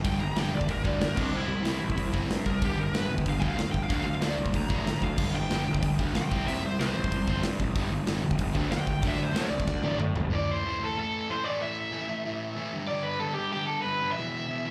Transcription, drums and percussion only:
0.04 kick, open hi-hat
0.36 snare, open hi-hat
0.61 kick
0.68 kick, open hi-hat
0.85 kick
1.01 snare, open hi-hat
1.17 kick, crash
1.65 snare, open hi-hat
1.90 kick
1.98 kick, open hi-hat
2.14 kick
2.30 snare, open hi-hat
2.46 kick
2.62 kick, open hi-hat
2.94 snare, open hi-hat
3.18 kick
3.26 kick, open hi-hat
3.42 kick
3.58 snare, open hi-hat
3.74 kick
3.90 kick, open hi-hat
4.22 snare, open hi-hat
4.46 kick
4.54 kick, open hi-hat
4.70 kick
4.87 snare, open hi-hat
5.02 kick
5.18 kick, crash
5.50 snare, open hi-hat
5.74 kick
5.83 kick, open hi-hat
5.99 kick
6.15 snare, open hi-hat
6.32 kick
6.48 open hi-hat
6.80 snare, open hi-hat
7.04 kick
7.12 kick, open hi-hat
7.28 kick
7.43 snare, open hi-hat
7.60 kick
7.76 kick, open hi-hat
8.07 snare, open hi-hat
8.31 kick
8.39 kick, open hi-hat
8.55 kick
8.72 snare, open hi-hat
8.87 kick
9.02 kick, open hi-hat
9.36 snare, open hi-hat
9.60 kick
9.68 kick, snare
9.83 high tom
10.00 mid tom
10.16 floor tom

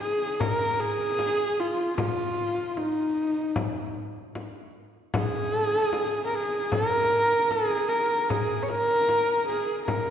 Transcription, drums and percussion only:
0.01 frame drum
0.40 frame drum
0.99 frame drum
1.19 frame drum
1.98 frame drum
2.57 frame drum
2.77 frame drum
3.16 frame drum
3.56 frame drum
4.16 frame drum
4.35 frame drum
5.14 frame drum
5.73 frame drum
5.93 frame drum
6.32 frame drum
6.72 frame drum
7.31 frame drum
7.51 frame drum
8.30 frame drum
8.70 frame drum
9.09 frame drum
9.49 frame drum
9.88 frame drum

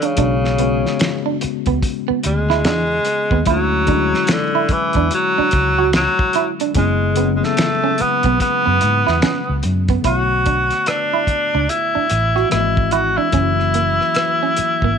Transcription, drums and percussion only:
0.02 closed hi-hat
0.17 kick, closed hi-hat
0.44 snare
0.58 closed hi-hat
0.86 snare
0.99 finger snap, snare, closed hi-hat
1.41 closed hi-hat
1.66 kick, closed hi-hat
1.82 kick, closed hi-hat
2.23 closed hi-hat
2.50 snare
2.64 finger snap, snare, closed hi-hat
3.05 closed hi-hat
3.31 kick
3.46 kick, closed hi-hat
3.87 kick, closed hi-hat
4.14 snare
4.27 finger snap, snare, closed hi-hat
4.69 kick, closed hi-hat
4.93 kick, closed hi-hat
5.11 closed hi-hat
5.51 kick, closed hi-hat
5.93 finger snap, snare, closed hi-hat
6.19 kick
6.33 closed hi-hat
6.60 closed hi-hat
6.75 kick, closed hi-hat
7.16 closed hi-hat
7.43 snare
7.57 finger snap, snare, closed hi-hat
7.98 closed hi-hat
8.23 kick, closed hi-hat
8.40 kick, closed hi-hat
8.81 closed hi-hat
9.07 snare
9.22 finger snap, snare, closed hi-hat
9.63 closed hi-hat
9.88 kick, closed hi-hat
10.04 kick, closed hi-hat
10.46 kick, closed hi-hat
10.71 cross-stick, closed hi-hat
10.86 cross-stick, closed hi-hat
11.27 kick, closed hi-hat
11.69 closed hi-hat
12.10 closed hi-hat
12.37 cross-stick
12.51 cross-stick, closed hi-hat
12.77 kick
12.91 closed hi-hat
13.32 kick, closed hi-hat
13.60 cross-stick
13.74 closed hi-hat
14.01 cross-stick
14.14 cross-stick, closed hi-hat
14.57 closed hi-hat
14.82 kick

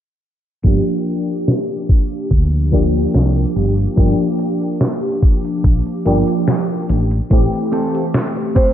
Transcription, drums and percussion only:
0.64 kick
1.06 closed hi-hat
1.28 closed hi-hat
1.48 snare
1.70 closed hi-hat
1.89 kick, closed hi-hat
2.11 closed hi-hat
2.31 kick, closed hi-hat
2.53 closed hi-hat
2.73 kick, closed hi-hat
2.95 closed hi-hat
3.14 snare
3.36 closed hi-hat
3.56 closed hi-hat
3.78 closed hi-hat
3.98 kick, closed hi-hat
4.19 closed hi-hat
4.39 closed hi-hat
4.61 closed hi-hat
4.81 snare, closed hi-hat
5.03 closed hi-hat
5.23 kick, closed hi-hat
5.44 closed hi-hat
5.64 kick, closed hi-hat
5.86 closed hi-hat
6.06 closed hi-hat
6.28 closed hi-hat
6.48 snare, closed hi-hat
6.70 closed hi-hat
6.89 closed hi-hat
7.11 closed hi-hat
7.31 kick, closed hi-hat
7.53 closed hi-hat
7.73 closed hi-hat
7.95 closed hi-hat
8.14 snare, closed hi-hat
8.36 closed hi-hat
8.56 kick, closed hi-hat

